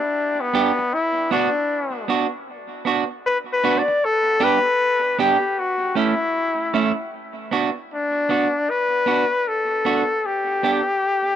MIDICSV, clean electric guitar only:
0, 0, Header, 1, 3, 480
1, 0, Start_track
1, 0, Key_signature, 2, "minor"
1, 0, Tempo, 777202
1, 572, Time_signature, 4, 2, 24, 8
1, 7015, End_track
2, 0, Start_track
2, 0, Title_t, "Clean electric guitar"
2, 0, Program_c, 0, 27
2, 331, Note_on_c, 0, 59, 88
2, 338, Note_on_c, 0, 62, 94
2, 339, Note_on_c, 0, 67, 99
2, 436, Note_off_c, 0, 59, 0
2, 439, Note_off_c, 0, 62, 0
2, 440, Note_off_c, 0, 67, 0
2, 808, Note_on_c, 0, 59, 84
2, 811, Note_on_c, 0, 62, 90
2, 818, Note_on_c, 0, 66, 95
2, 914, Note_off_c, 0, 59, 0
2, 916, Note_off_c, 0, 62, 0
2, 919, Note_off_c, 0, 66, 0
2, 1286, Note_on_c, 0, 59, 70
2, 1293, Note_on_c, 0, 62, 78
2, 1296, Note_on_c, 0, 66, 85
2, 1393, Note_off_c, 0, 59, 0
2, 1396, Note_off_c, 0, 62, 0
2, 1398, Note_off_c, 0, 66, 0
2, 1760, Note_on_c, 0, 59, 80
2, 1768, Note_on_c, 0, 62, 81
2, 1773, Note_on_c, 0, 66, 88
2, 1869, Note_off_c, 0, 59, 0
2, 1873, Note_off_c, 0, 62, 0
2, 1876, Note_off_c, 0, 66, 0
2, 2246, Note_on_c, 0, 59, 90
2, 2247, Note_on_c, 0, 62, 85
2, 2252, Note_on_c, 0, 66, 99
2, 2352, Note_off_c, 0, 59, 0
2, 2353, Note_off_c, 0, 62, 0
2, 2355, Note_off_c, 0, 66, 0
2, 2718, Note_on_c, 0, 59, 89
2, 2719, Note_on_c, 0, 62, 104
2, 2725, Note_on_c, 0, 67, 97
2, 2828, Note_off_c, 0, 59, 0
2, 2828, Note_off_c, 0, 62, 0
2, 2831, Note_off_c, 0, 67, 0
2, 3203, Note_on_c, 0, 59, 84
2, 3207, Note_on_c, 0, 62, 92
2, 3211, Note_on_c, 0, 67, 106
2, 3310, Note_off_c, 0, 59, 0
2, 3312, Note_off_c, 0, 62, 0
2, 3314, Note_off_c, 0, 67, 0
2, 3677, Note_on_c, 0, 57, 82
2, 3682, Note_on_c, 0, 61, 91
2, 3684, Note_on_c, 0, 64, 86
2, 3787, Note_off_c, 0, 57, 0
2, 3789, Note_off_c, 0, 61, 0
2, 3790, Note_off_c, 0, 64, 0
2, 4160, Note_on_c, 0, 57, 89
2, 4162, Note_on_c, 0, 61, 90
2, 4168, Note_on_c, 0, 64, 96
2, 4268, Note_off_c, 0, 57, 0
2, 4269, Note_off_c, 0, 61, 0
2, 4272, Note_off_c, 0, 64, 0
2, 4640, Note_on_c, 0, 59, 79
2, 4646, Note_on_c, 0, 62, 83
2, 4650, Note_on_c, 0, 66, 93
2, 4748, Note_off_c, 0, 59, 0
2, 4751, Note_off_c, 0, 62, 0
2, 4753, Note_off_c, 0, 66, 0
2, 5120, Note_on_c, 0, 59, 70
2, 5125, Note_on_c, 0, 62, 74
2, 5130, Note_on_c, 0, 66, 79
2, 5228, Note_off_c, 0, 59, 0
2, 5231, Note_off_c, 0, 62, 0
2, 5233, Note_off_c, 0, 66, 0
2, 5596, Note_on_c, 0, 59, 65
2, 5600, Note_on_c, 0, 62, 67
2, 5606, Note_on_c, 0, 66, 76
2, 5706, Note_off_c, 0, 59, 0
2, 5709, Note_off_c, 0, 62, 0
2, 5711, Note_off_c, 0, 66, 0
2, 6084, Note_on_c, 0, 59, 80
2, 6089, Note_on_c, 0, 62, 88
2, 6091, Note_on_c, 0, 66, 86
2, 6190, Note_off_c, 0, 59, 0
2, 6193, Note_off_c, 0, 62, 0
2, 6194, Note_off_c, 0, 66, 0
2, 6566, Note_on_c, 0, 59, 75
2, 6570, Note_on_c, 0, 62, 81
2, 6575, Note_on_c, 0, 67, 77
2, 6672, Note_off_c, 0, 59, 0
2, 6674, Note_off_c, 0, 62, 0
2, 6676, Note_off_c, 0, 67, 0
2, 7015, End_track
3, 0, Start_track
3, 0, Title_t, "Muted clean electric guitar strokes"
3, 488, Note_on_c, 9, 29, 49
3, 549, Note_off_c, 9, 29, 0
3, 2398, Note_on_c, 9, 29, 50
3, 2460, Note_off_c, 9, 29, 0
3, 7015, End_track
0, 0, End_of_file